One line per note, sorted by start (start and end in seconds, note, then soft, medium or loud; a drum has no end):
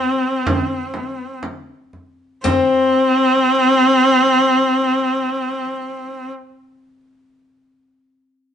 0.00 1.37 C4 medium
0.00 1.45 C4 medium
0.00 frame drum soft
0.47 frame drum medium
0.94 frame drum medium
1.43 frame drum medium
1.93 frame drum soft
2.44 6.30 C4 medium
2.44 6.31 C4 medium
2.44 frame drum medium